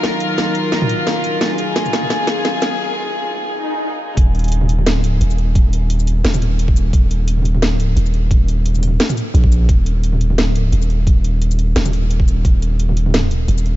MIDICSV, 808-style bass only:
0, 0, Header, 1, 2, 480
1, 0, Start_track
1, 0, Key_signature, -6, "minor"
1, 0, Tempo, 344828
1, 49, Time_signature, 4, 2, 24, 8
1, 19159, End_track
2, 0, Start_track
2, 0, Title_t, "808-style bass"
2, 0, Program_c, 0, 38
2, 5806, Note_on_c, 0, 27, 98
2, 6808, Note_off_c, 0, 27, 0
2, 6808, Note_on_c, 0, 26, 98
2, 7230, Note_off_c, 0, 26, 0
2, 7250, Note_on_c, 0, 27, 93
2, 8672, Note_off_c, 0, 27, 0
2, 8689, Note_on_c, 0, 27, 99
2, 9631, Note_off_c, 0, 27, 0
2, 9650, Note_on_c, 0, 27, 100
2, 10652, Note_off_c, 0, 27, 0
2, 10652, Note_on_c, 0, 26, 100
2, 11072, Note_off_c, 0, 26, 0
2, 11088, Note_on_c, 0, 27, 95
2, 12511, Note_off_c, 0, 27, 0
2, 13002, Note_on_c, 0, 34, 94
2, 13468, Note_off_c, 0, 34, 0
2, 13487, Note_on_c, 0, 27, 98
2, 14489, Note_off_c, 0, 27, 0
2, 14489, Note_on_c, 0, 26, 98
2, 14910, Note_off_c, 0, 26, 0
2, 14928, Note_on_c, 0, 27, 93
2, 16351, Note_off_c, 0, 27, 0
2, 16367, Note_on_c, 0, 27, 97
2, 17311, Note_off_c, 0, 27, 0
2, 17327, Note_on_c, 0, 27, 102
2, 18751, Note_off_c, 0, 27, 0
2, 18768, Note_on_c, 0, 27, 97
2, 19159, Note_off_c, 0, 27, 0
2, 19159, End_track
0, 0, End_of_file